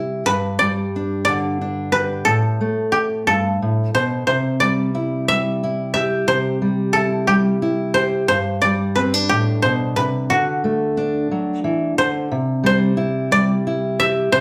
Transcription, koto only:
Already playing: G4 A4
0.26 B4
0.59 D5
1.25 D5
1.92 B4
2.25 A4
2.92 G4
3.27 A4
3.95 C5
4.27 C5
4.60 D5
5.28 E5
5.94 E5
6.28 C5
6.93 A4
7.27 G4
7.94 C5
8.28 C5
8.62 D5
8.96 B4
9.29 G4
9.62 C5
9.96 B4
10.30 F#4
11.98 C5
12.66 C5
13.32 D5
14.00 E5
14.32 C5

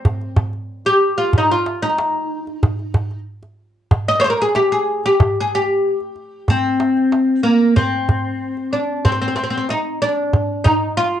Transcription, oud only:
Already playing: C4
0.86 G4
1.18 F4
1.38 D#4
1.51 F4
1.82 D#4
4.08 D#5
4.20 C5 C#5
4.24 C5
4.30 A#4
4.42 G#4
4.56 G4
4.72 G#4
5.06 G4
5.40 G#4
5.55 G4
6.50 C4
7.43 A#3
7.76 C4
8.73 D4
9.05 C4
9.12 C4
9.22 C4
9.28 C4
9.36 C4
9.44 C4
9.50 C4
9.57 C4
9.70 D#4
10.02 D4
10.64 D#4
10.97 F4

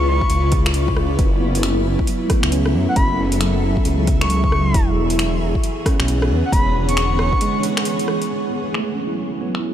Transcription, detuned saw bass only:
0.08 C#2
0.30 C#2
0.97 C#2
1.19 F#1
1.85 F#1
2.44 C#2
2.74 F#2
2.96 F#1
3.63 F#1
3.85 C#2
4.74 E1
5.42 E1
6.00 B1
6.31 E2
6.53 E1
7.19 E1

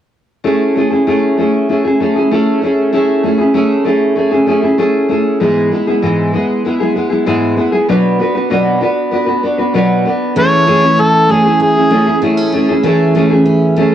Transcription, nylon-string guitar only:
0.44 A3 C#4 E4 G#4
0.76 A3 C#4 E4 G#4
0.91 C#4 E4 G#4
1.07 A3 C#4 E4 G#4
1.37 A3 C#4 E4 G#4
1.69 A3 C#4 E4 G#4
1.85 C#4 E4 G#4
2.00 A3 C#4 E4 G#4
2.16 C#4 E4 G#4
2.31 A3 C#4 E4 G#4
2.62 A3 C#4 E4 G#4
2.93 A3 C#4 E4 G#4
3.23 A3 C#4 E4 G#4
3.38 C#4 E4 G#4
3.54 A3 C#4 E4 G#4
3.85 A3 C#4 E4 G#4
4.16 A3 C#4 E4 G#4
4.31 C#4 E4 G#4
4.46 A3 C#4 E4 G#4
4.62 C#4 E4 G#4
4.78 A3 C#4 E4 G#4
5.09 A3 C#4 E4 G#4
5.40 G#2 E3 G#3 B3 E4 G#4
5.72 G#3 B3 E4 G#4
5.87 G#3 B3 E4 G#4
6.02 G#2 E3 G#3 B3 E4 G#4
6.33 G#3 B3 E4 G#4
6.65 G#3 B3 E4 G#4
6.80 G#3 B3 E4 G#4
6.95 G#3 B3 E4 G#4
7.10 G#3 B3 E4 G#4
7.26 G#2 E3 G#3 B3 E4 G#4
7.56 G#3 B3 E4 G#4
7.72 G#3 B3 E4 G#4
7.89 B2 F#3 B3 D4 F#4 B4
8.19 B3 D4 F#4 B4
8.35 B3 D4 F#4 B4
8.50 B2 F#3 B3 D4 F#4 B4
8.80 B3 D4 F#4 B4
9.11 B3 D4 F#4 B4
9.26 B3 D4 F#4 B4
9.43 B3 D4 F#4 B4
9.58 B3 D4 F#4 B4
9.74 B2 F#3 B3 D4 F#4 B4
10.05 B3 D4 F#4 B4
10.36 A3 C#4 E4 G#4
10.67 A3 C#4 E4 G#4
10.84 C#4 E4
11.29 A3 C#4 E4 G#4
11.45 C#4 E4 G#4
11.76 C#4 E4 G#4
11.91 A3 C#4 E4 G#4
12.07 C#4 E4 G#4
12.22 A3 C#4 E4 G#4
12.53 A3 C#4 E4 G#4
12.69 C#4 E4 G#4
12.84 A3 C#4 E4 G#4
13.16 A3 C#4 E4 G#4
13.30 C#4 E4 G#4
13.77 A3 C#4 E4 G#4

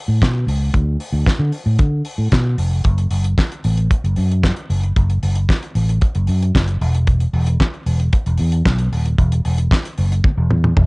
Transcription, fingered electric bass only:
0.08 A2
0.22 B2
0.47 C#2
0.74 D2
1.13 D2
1.39 D3
1.66 A2
1.79 D3
2.18 A2
2.32 B2
2.58 F1
2.84 F#1
3.11 F#1
3.65 A1
4.04 F#1
4.18 F#2
4.70 F#1
4.96 F#1
5.23 F#1
5.75 A1
6.15 F#1
6.28 F#2
6.55 F#1
6.81 E1
7.33 E1
7.86 E1
8.27 E1
8.40 E2
8.66 B1
8.92 D#1
9.18 E1
9.45 E1
9.98 F#1
10.37 E1
10.50 E2
10.76 E1

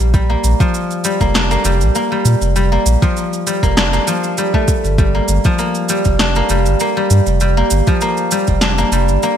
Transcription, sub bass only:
0.00 A#1
0.44 A#1
1.21 F1
1.65 F1
1.81 A#1
2.25 A#2
2.42 F1
2.86 A#1
3.63 F1
4.84 G1
5.29 G1
6.06 F1
6.50 F1
6.66 G1
7.11 G2
7.27 F1
7.71 G1
8.48 F1
8.92 F1
9.09 G1

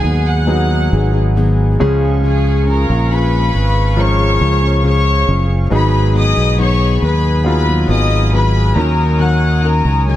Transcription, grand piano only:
Already playing: G#2 F#3 B3 D#4 G#4
0.47 F#3 B3 D#4 G#4
1.79 C#3 F3 G#3 C#4 G#4
3.96 F3 G#3 C#4 A#4
5.70 G#2 F#3 B3 D#4 G#4
7.44 F#3 B3 D#4 F4
8.76 D#3 F#3 C#4 D#4 A#4

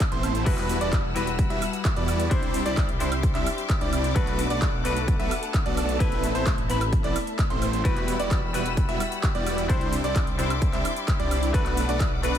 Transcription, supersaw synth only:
0.12 A3 B3 C4 E4 C5
0.46 G3 B3 E4 F#4 B4
0.81 G3 B3 E4 F#4 D5
1.16 G3 B3 E4 F#4 B4
1.50 G3 B3 E4 F#4 E5
1.96 G3 B3 E4 F#4 D5
2.31 C4 D4 E4
2.66 G3 C4 D4 E4 D5
3.00 G3 C4 D4 E4 C5
3.35 G3 C4 D4 E4 E5
3.81 G3 C4 D4 E4 D5
4.16 A3 B3 D4
4.50 A3 B3 D4 F#4 D5
4.85 A3 B3 D4 F#4 B4
5.19 A3 B3 D4 F#4 E5
5.66 A3 B3 D4 F#4 D5
6.00 A3 B3
6.35 A3 B3 C4 E4 C5
6.69 A3 B3 C4 E4 B4
7.04 A3 B3 C4 E4 D5
7.50 A3 B3 C4 E4 C5
7.85 G3
8.19 G3 B3 E4 F#4 D5
8.54 G3 B3 E4 F#4 B4
8.89 G3 B3 E4 F#4 E5
9.35 G3 B3 E4 F#4 D5
9.69 G3 C4 D4 E4 C5
10.04 G3 C4 D4 E4 D5
10.39 G3 C4 D4 E4 C5
10.73 G3 C4 D4 E4 E5
11.19 G3 C4 D4 E4 D5
11.54 B3 B4
11.89 A3 B3 D4 F#4 D5
12.23 A3 B3 D4 F#4 B4

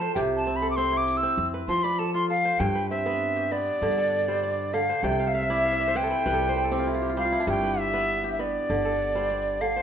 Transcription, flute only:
Already playing: A5
0.15 G5
0.36 A5
0.56 B5
0.71 D6
0.76 C6
0.97 D6
1.17 E6
1.68 C6
1.83 B5
1.99 A5
2.14 C6
2.30 F5
2.59 G5
2.90 E5
3.52 D5
4.74 F5
5.04 G5
5.28 F5
5.34 E5
5.97 G5
7.18 F5
7.49 G5
7.80 E5
8.33 E5
8.40 D5
9.61 F5

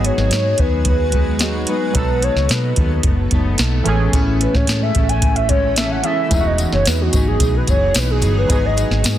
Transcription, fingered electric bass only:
0.17 G#1
0.31 G#2
0.59 D#2
1.95 B1
2.35 C#2
2.50 B2
2.77 D#2
3.04 F#1
3.32 F#1
3.58 B1
3.86 A1
4.13 A1
4.54 A2
4.67 A2
4.96 A1
6.31 E1
6.72 F#1
6.86 E2
7.14 G#1
7.40 B1
7.68 F#1
7.95 B1
8.22 G1
8.50 G#1
8.90 G#1
9.04 G#2

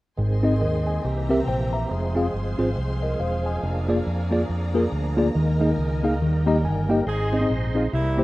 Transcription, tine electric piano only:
0.18 G#2
0.43 C4 D#4 G#4 D#5
0.61 A#4 D#5
0.87 D#5 G#5
1.05 C3
1.29 C4 G4 A#4 E5
1.48 C5 G5
1.73 E5 A#5
2.15 C4 F4 G#4 F5
2.58 C4 F4 G#4 C5
3.02 A#4 D#5
3.20 C5 F5
3.46 D#5 G#5
3.88 A#3 F4 G#4 D5
4.31 A#3 F4 G#4 D5
4.74 A#3 F4 G#4 A#4
5.17 A#3 F4 G#4 D5
5.36 D#3
5.60 A#3 D#4 G#4 D#5
6.03 A#3 D#4 G#4 F5
6.22 D#3
6.46 A#3 D#4 G4 D#5 A#5
6.65 G#5
6.89 A#3 D#4 G4 D#5 G5
7.07 G#2
7.33 C4 D#4 G#4 D#5
7.41 C4 D#4 G#4 D#5
7.75 C4 D#4 G#4 D#5
7.93 C3
8.18 A#3 E4 G4 C5

